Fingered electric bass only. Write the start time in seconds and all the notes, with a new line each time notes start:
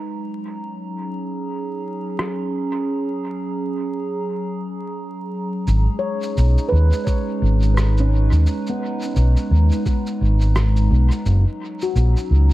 5.67 G#1
6.37 B1
6.72 D#2
7.42 G#1
8.32 D#2
9.16 B1
9.51 D#2
10.21 G#1
10.91 B1
11.26 F#1
11.95 A#1
12.31 C#2